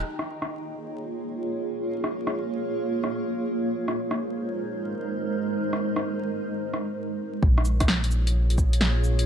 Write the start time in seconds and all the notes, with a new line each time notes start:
0.04 A#3 F4 G#4 C#5
0.19 cross-stick
0.42 cross-stick
2.04 cross-stick
2.27 cross-stick
3.04 cross-stick
3.74 G#3 D#4 A#4 C5
3.88 cross-stick
4.11 cross-stick
5.73 cross-stick
5.96 cross-stick
6.74 cross-stick
7.42 A#1 A#3 F4 G#4 C#5, kick
7.58 cross-stick
7.65 cabasa
7.80 kick, cross-stick, closed hi-hat
7.88 snare
8.04 closed hi-hat
8.11 cabasa
8.27 closed hi-hat
8.50 closed hi-hat
8.58 kick, cabasa
8.73 closed hi-hat
8.81 snare
9.04 cabasa
9.19 closed hi-hat